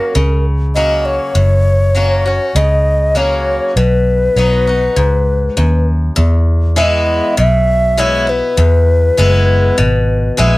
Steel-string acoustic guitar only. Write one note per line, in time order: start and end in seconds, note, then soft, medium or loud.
0.00 0.12 F#3 medium
0.00 0.13 A#3 medium
0.00 0.13 C#4 medium
0.00 0.13 F#4 medium
0.15 1.30 C#3 medium
0.76 1.33 F#3 medium
0.76 1.33 A#3 medium
0.76 1.33 C#4 medium
0.76 1.34 F#4 medium
1.35 2.50 F#2 medium
1.95 2.24 F#3 soft
1.95 2.25 A#3 medium
1.95 2.25 C#4 medium
1.95 2.24 F#4 medium
2.26 2.56 C#4 soft
2.26 2.55 F#4 soft
2.56 3.70 C#3 medium
3.15 3.73 F#3 medium
3.15 3.73 A#3 medium
3.15 3.74 C#4 medium
3.15 3.74 F#4 medium
3.77 4.91 B2 medium
4.36 4.66 F#3 medium
4.36 4.66 B3 medium
4.36 4.67 D#4 medium
4.36 4.66 F#4 medium
4.67 4.97 D#4 soft
4.67 4.96 F#4 medium
4.96 5.54 G#2 medium
5.57 6.14 F#2 medium
6.16 7.31 E2 medium
6.76 7.34 E3 medium
6.76 7.35 G#3 medium
6.76 7.35 B3 medium
6.76 7.35 E4 medium
7.37 8.52 B2 medium
7.97 8.27 E3 medium
7.97 8.27 G#3 medium
7.97 8.27 B3 medium
7.97 8.26 E4 medium
8.27 8.58 B3 soft
8.27 8.57 E4 medium
8.57 9.72 E2 medium
9.17 9.75 E3 medium
9.17 9.76 G#3 medium
9.17 9.76 B3 medium
9.17 9.76 E4 medium
9.78 10.58 B2 medium
10.37 10.58 E3 medium
10.37 10.58 G#3 medium
10.37 10.58 B3 medium
10.37 10.58 E4 medium